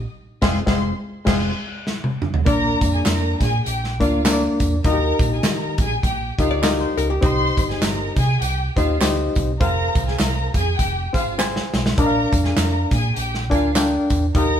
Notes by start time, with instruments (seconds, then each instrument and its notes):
0.42 fingered electric bass F1, reed electric piano G#3 C4 F4 G#4, string section C5 C6, kick, snare, crash
0.66 fingered electric bass F1, reed electric piano G#3 C4 F4 G#4, string section C5 C6, kick, snare
1.25 fingered electric bass F1, reed electric piano G#3 C4 F4 G#4, string section C5 C6, kick, snare, crash
1.87 snare
2.04 high tom
2.22 mid tom
2.34 floor tom
2.45 fingered electric bass A#1, reed electric piano A#3 D4 F4 A#4 D5, string section A#4 A#5, kick, closed hi-hat, tambourine
2.81 fingered electric bass F2, kick, closed hi-hat, tambourine
2.93 string section G#4 G#5
3.05 fingered electric bass F2, string section A#4 A#5, snare, clap, closed hi-hat, tambourine
3.40 fingered electric bass A#2, string section G#4 G#5, kick, snare, closed hi-hat, tambourine
3.65 fingered electric bass A#1, string section G4 G5, closed hi-hat, tambourine
3.84 snare
4.00 fingered electric bass D2, reed electric piano A#3 D4 F4 A#4 D5, string section F4 F5, kick, closed hi-hat, tambourine
4.25 reed electric piano A#3 D4 F4 A#4 C5, snare, clap, closed hi-hat, tambourine
4.33 reed electric piano D5
4.60 fingered electric bass E2, kick, closed hi-hat, tambourine
4.84 fingered electric bass D#2, reed electric piano D#4 F4 F#4 A#4 D#5, string section A#4 A#5, kick, closed hi-hat, tambourine
4.92 reed electric piano G4
5.19 fingered electric bass A#1, kick, closed hi-hat, tambourine
5.32 string section G#4 G#5
5.43 fingered electric bass D#3, string section A#4 A#5, snare, clap, closed hi-hat, tambourine
5.78 fingered electric bass A#1, string section G#4 G#5, kick, closed hi-hat, tambourine
6.03 fingered electric bass A#1, string section G4 G5, kick, closed hi-hat, tambourine
6.38 fingered electric bass D2, reed electric piano D#4 F4 G4 A#4 D#5, string section F4 F5, kick, closed hi-hat, tambourine
6.51 hollow-body jazz guitar D5
6.62 reed electric piano D#4 F4 F#4 A#4 D#5, snare, clap, closed hi-hat, tambourine
6.69 reed electric piano G4
6.80 hollow-body jazz guitar C5
6.97 fingered electric bass C#2, hollow-body jazz guitar A#4, closed hi-hat, tambourine
7.10 hollow-body jazz guitar G4
7.21 fingered electric bass C2, reed electric piano C4 D#4 G4 C5 D#5, string section C5 C6, kick, closed hi-hat, tambourine
7.57 fingered electric bass G1, kick, closed hi-hat, tambourine
7.70 string section G#4 G#5, snare
7.82 fingered electric bass G1, string section A#4 A#5, snare, clap, closed hi-hat, tambourine
8.16 fingered electric bass C3, string section G#4 G#5, kick, snare, closed hi-hat, tambourine
8.41 fingered electric bass C2, string section G4 G5, closed hi-hat, tambourine
8.76 fingered electric bass D#2, reed electric piano C4 D#4 G4 C5 D#5, string section F4 F5, kick, closed hi-hat, tambourine
9.00 fingered electric bass D2, reed electric piano C4 D#4 G4 C5 D#5, snare, clap, closed hi-hat, tambourine
9.35 fingered electric bass C2, kick, closed hi-hat, tambourine
9.60 fingered electric bass F1, reed electric piano C4 F4 G#4 C5 F5, string section A#4 A#5, kick, closed hi-hat
9.95 fingered electric bass C2, kick, closed hi-hat, tambourine
10.08 string section G#4 G#5, snare
10.19 fingered electric bass C2, string section A#4 A#5, snare, clap, closed hi-hat, tambourine
10.54 fingered electric bass F2, string section G#4 G#5, kick, closed hi-hat, tambourine
10.79 fingered electric bass F1, string section G4 G5, kick, closed hi-hat, tambourine
11.13 fingered electric bass G#1, reed electric piano C4 F4 G#4 C5 F5, string section F4 F5, kick, closed hi-hat, tambourine
11.38 reed electric piano C4 F4 G#4 C5 G#5, snare, clap, tambourine
11.56 snare
11.74 fingered electric bass B1, snare, tambourine
11.86 snare
11.98 fingered electric bass A#1, reed electric piano D4 F4 A#4 D5 D#5, string section A#4 A#5, kick, closed hi-hat, tambourine
12.06 reed electric piano F5
12.33 fingered electric bass F2, kick, closed hi-hat, tambourine
12.45 string section G#4 G#5, snare
12.57 fingered electric bass F2, string section A#4 A#5, snare, clap, closed hi-hat, tambourine
12.91 fingered electric bass A#2, string section G#4 G#5, kick, snare, closed hi-hat, tambourine
13.16 fingered electric bass A#1, string section G4 G5, closed hi-hat, tambourine
13.34 snare
13.50 fingered electric bass D2, reed electric piano D4 F4 A#4 D5 G#5, string section F4 F5, kick, closed hi-hat, tambourine
13.75 reed electric piano D4 F4 A#4 D5 G5, snare, clap, closed hi-hat, tambourine
14.10 fingered electric bass E2, kick, closed hi-hat, tambourine
14.35 fingered electric bass D#2, reed electric piano D#4 F4 G4 A#4 D#5, string section A#4 A#5, kick, closed hi-hat, tambourine